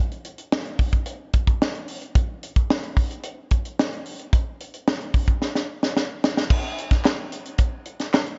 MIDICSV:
0, 0, Header, 1, 2, 480
1, 0, Start_track
1, 0, Tempo, 543478
1, 1902, Time_signature, 4, 2, 24, 8
1, 7404, End_track
2, 0, Start_track
2, 0, Title_t, "Drums"
2, 102, Note_on_c, 9, 42, 33
2, 190, Note_off_c, 9, 42, 0
2, 217, Note_on_c, 9, 42, 68
2, 306, Note_off_c, 9, 42, 0
2, 336, Note_on_c, 9, 42, 46
2, 424, Note_off_c, 9, 42, 0
2, 463, Note_on_c, 9, 38, 102
2, 551, Note_off_c, 9, 38, 0
2, 575, Note_on_c, 9, 42, 31
2, 663, Note_off_c, 9, 42, 0
2, 697, Note_on_c, 9, 46, 61
2, 699, Note_on_c, 9, 36, 86
2, 785, Note_off_c, 9, 46, 0
2, 787, Note_off_c, 9, 36, 0
2, 820, Note_on_c, 9, 36, 78
2, 821, Note_on_c, 9, 42, 50
2, 908, Note_off_c, 9, 36, 0
2, 909, Note_off_c, 9, 42, 0
2, 933, Note_on_c, 9, 42, 77
2, 1022, Note_off_c, 9, 42, 0
2, 1177, Note_on_c, 9, 42, 68
2, 1182, Note_on_c, 9, 36, 83
2, 1266, Note_off_c, 9, 42, 0
2, 1270, Note_off_c, 9, 36, 0
2, 1299, Note_on_c, 9, 42, 46
2, 1302, Note_on_c, 9, 36, 90
2, 1387, Note_off_c, 9, 42, 0
2, 1390, Note_off_c, 9, 36, 0
2, 1429, Note_on_c, 9, 38, 83
2, 1518, Note_off_c, 9, 38, 0
2, 1544, Note_on_c, 9, 42, 30
2, 1632, Note_off_c, 9, 42, 0
2, 1659, Note_on_c, 9, 46, 67
2, 1748, Note_off_c, 9, 46, 0
2, 1780, Note_on_c, 9, 42, 45
2, 1869, Note_off_c, 9, 42, 0
2, 1902, Note_on_c, 9, 36, 110
2, 1903, Note_on_c, 9, 42, 61
2, 1991, Note_off_c, 9, 36, 0
2, 1991, Note_off_c, 9, 42, 0
2, 2145, Note_on_c, 9, 42, 68
2, 2233, Note_off_c, 9, 42, 0
2, 2261, Note_on_c, 9, 42, 43
2, 2263, Note_on_c, 9, 36, 89
2, 2350, Note_off_c, 9, 42, 0
2, 2351, Note_off_c, 9, 36, 0
2, 2388, Note_on_c, 9, 38, 101
2, 2477, Note_off_c, 9, 38, 0
2, 2501, Note_on_c, 9, 42, 34
2, 2590, Note_off_c, 9, 42, 0
2, 2621, Note_on_c, 9, 36, 90
2, 2623, Note_on_c, 9, 46, 59
2, 2709, Note_off_c, 9, 36, 0
2, 2711, Note_off_c, 9, 46, 0
2, 2743, Note_on_c, 9, 42, 47
2, 2831, Note_off_c, 9, 42, 0
2, 2856, Note_on_c, 9, 42, 82
2, 2944, Note_off_c, 9, 42, 0
2, 3097, Note_on_c, 9, 42, 67
2, 3103, Note_on_c, 9, 36, 82
2, 3185, Note_off_c, 9, 42, 0
2, 3191, Note_off_c, 9, 36, 0
2, 3224, Note_on_c, 9, 42, 47
2, 3312, Note_off_c, 9, 42, 0
2, 3351, Note_on_c, 9, 38, 87
2, 3439, Note_off_c, 9, 38, 0
2, 3468, Note_on_c, 9, 42, 32
2, 3557, Note_off_c, 9, 42, 0
2, 3583, Note_on_c, 9, 46, 63
2, 3671, Note_off_c, 9, 46, 0
2, 3703, Note_on_c, 9, 42, 45
2, 3791, Note_off_c, 9, 42, 0
2, 3824, Note_on_c, 9, 36, 97
2, 3824, Note_on_c, 9, 42, 66
2, 3912, Note_off_c, 9, 36, 0
2, 3912, Note_off_c, 9, 42, 0
2, 4066, Note_on_c, 9, 42, 64
2, 4154, Note_off_c, 9, 42, 0
2, 4183, Note_on_c, 9, 42, 42
2, 4272, Note_off_c, 9, 42, 0
2, 4307, Note_on_c, 9, 38, 101
2, 4395, Note_off_c, 9, 38, 0
2, 4420, Note_on_c, 9, 42, 33
2, 4508, Note_off_c, 9, 42, 0
2, 4541, Note_on_c, 9, 36, 84
2, 4541, Note_on_c, 9, 46, 62
2, 4629, Note_off_c, 9, 36, 0
2, 4630, Note_off_c, 9, 46, 0
2, 4661, Note_on_c, 9, 36, 87
2, 4661, Note_on_c, 9, 42, 49
2, 4749, Note_off_c, 9, 36, 0
2, 4749, Note_off_c, 9, 42, 0
2, 4784, Note_on_c, 9, 38, 49
2, 4873, Note_off_c, 9, 38, 0
2, 4906, Note_on_c, 9, 38, 48
2, 4994, Note_off_c, 9, 38, 0
2, 5149, Note_on_c, 9, 38, 58
2, 5237, Note_off_c, 9, 38, 0
2, 5269, Note_on_c, 9, 38, 66
2, 5357, Note_off_c, 9, 38, 0
2, 5511, Note_on_c, 9, 38, 86
2, 5600, Note_off_c, 9, 38, 0
2, 5629, Note_on_c, 9, 38, 70
2, 5718, Note_off_c, 9, 38, 0
2, 5743, Note_on_c, 9, 36, 110
2, 5746, Note_on_c, 9, 49, 81
2, 5832, Note_off_c, 9, 36, 0
2, 5835, Note_off_c, 9, 49, 0
2, 5991, Note_on_c, 9, 42, 71
2, 6080, Note_off_c, 9, 42, 0
2, 6104, Note_on_c, 9, 36, 89
2, 6105, Note_on_c, 9, 42, 45
2, 6110, Note_on_c, 9, 38, 33
2, 6192, Note_off_c, 9, 36, 0
2, 6193, Note_off_c, 9, 42, 0
2, 6198, Note_off_c, 9, 38, 0
2, 6223, Note_on_c, 9, 39, 86
2, 6230, Note_on_c, 9, 38, 91
2, 6312, Note_off_c, 9, 39, 0
2, 6318, Note_off_c, 9, 38, 0
2, 6465, Note_on_c, 9, 42, 67
2, 6553, Note_off_c, 9, 42, 0
2, 6584, Note_on_c, 9, 42, 44
2, 6672, Note_off_c, 9, 42, 0
2, 6696, Note_on_c, 9, 42, 82
2, 6701, Note_on_c, 9, 36, 83
2, 6784, Note_off_c, 9, 42, 0
2, 6790, Note_off_c, 9, 36, 0
2, 6938, Note_on_c, 9, 42, 62
2, 7026, Note_off_c, 9, 42, 0
2, 7061, Note_on_c, 9, 42, 47
2, 7066, Note_on_c, 9, 38, 35
2, 7149, Note_off_c, 9, 42, 0
2, 7154, Note_off_c, 9, 38, 0
2, 7185, Note_on_c, 9, 39, 77
2, 7189, Note_on_c, 9, 38, 84
2, 7274, Note_off_c, 9, 39, 0
2, 7278, Note_off_c, 9, 38, 0
2, 7298, Note_on_c, 9, 42, 33
2, 7386, Note_off_c, 9, 42, 0
2, 7404, End_track
0, 0, End_of_file